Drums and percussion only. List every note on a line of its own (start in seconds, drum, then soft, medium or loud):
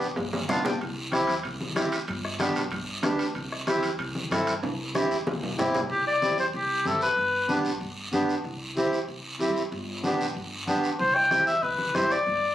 0.01 short guiro medium
0.16 bombo low medium
0.16 low timbale medium
0.16 long guiro medium
0.33 high conga medium
0.33 low timbale medium
0.49 bombo rim medium
0.49 low conga medium
0.49 short guiro medium
0.65 low conga medium
0.65 low timbale loud
0.65 short guiro medium
0.81 bombo low medium
0.81 high timbale medium
0.81 long guiro medium
1.12 bombo rim medium
1.12 high conga medium
1.12 high timbale medium
1.12 short guiro medium
1.27 high timbale medium
1.27 short guiro medium
1.44 bombo low medium
1.44 high timbale medium
1.44 long guiro medium
1.61 high conga medium
1.76 bombo rim medium
1.76 high conga medium
1.76 high timbale medium
1.76 short guiro medium
1.92 high timbale medium
1.92 short guiro medium
2.08 bombo low medium
2.08 high timbale medium
2.08 long guiro medium
2.25 bombo rim medium
2.39 bombo rim medium
2.39 high conga medium
2.39 high timbale medium
2.39 short guiro medium
2.56 high timbale medium
2.56 short guiro medium
2.71 bombo low medium
2.71 high timbale medium
2.71 long guiro medium
3.03 bombo low medium
3.03 bombo rim medium
3.03 high conga medium
3.03 high timbale medium
3.03 low timbale medium
3.03 short guiro medium
3.19 high timbale medium
3.19 short guiro medium
3.35 bombo low medium
3.35 high timbale medium
3.35 long guiro medium
3.52 bombo rim medium
3.67 bombo rim medium
3.67 high conga medium
3.67 high timbale medium
3.67 short guiro medium
3.83 high timbale medium
3.83 short guiro medium
3.99 bombo low medium
3.99 high timbale medium
3.99 long guiro medium
4.15 high conga medium
4.31 bombo rim medium
4.31 high conga medium
4.31 high timbale medium
4.31 short guiro medium
4.47 high timbale medium
4.47 short guiro medium
4.63 bombo low medium
4.63 high timbale medium
4.63 long guiro medium
4.95 bombo rim medium
4.95 high conga medium
4.95 high timbale medium
4.95 short guiro medium
5.11 short guiro medium
5.27 bombo low medium
5.27 high conga medium
5.27 low timbale medium
5.27 long guiro medium
5.43 low conga medium
5.59 bombo rim medium
5.59 low conga medium
5.59 low timbale medium
5.59 short guiro medium
5.74 low conga medium
5.74 low timbale loud
5.74 short guiro medium
5.90 long guiro medium
6.22 high conga medium
6.22 short guiro medium
6.38 short guiro medium
6.53 long guiro medium
6.85 high conga medium
6.85 short guiro medium
7.01 short guiro medium
7.17 long guiro medium
7.49 high conga medium
7.49 short guiro medium
7.65 short guiro medium
7.81 long guiro medium
8.13 high conga medium
8.13 short guiro medium
8.29 short guiro medium
8.45 long guiro medium
8.77 high conga medium
8.77 short guiro medium
8.93 short guiro medium
9.09 long guiro medium
9.40 high conga medium
9.40 short guiro medium
9.56 short guiro medium
9.72 long guiro medium
10.04 high conga medium
10.04 short guiro medium
10.21 short guiro medium
10.37 long guiro medium
10.67 high conga medium
10.67 short guiro medium
10.84 short guiro medium
10.99 bombo low medium
10.99 long guiro medium
11.16 bombo rim medium
11.31 bombo rim medium
11.31 high conga medium
11.31 short guiro medium
11.47 short guiro medium
11.63 bombo low medium
11.63 long guiro medium
11.78 high conga medium
11.95 bombo rim medium
11.95 high conga medium
11.95 short guiro medium
12.10 short guiro medium
12.26 bombo low medium
12.26 long guiro medium